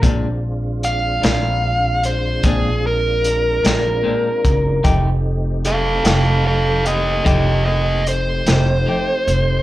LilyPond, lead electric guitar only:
\new Staff \with { instrumentName = "Lead electric guitar" } { \time 12/8 \key f \mixolydian \tempo 4. = 50 r4 f''8 f''4 c''8 aes'8 bes'2~ bes'8 | r4 <a' f''>8 <a' f''>8 <a' f''>8 <g' ees''>8 <g' ees''>8 <g' ees''>8 c''2 | }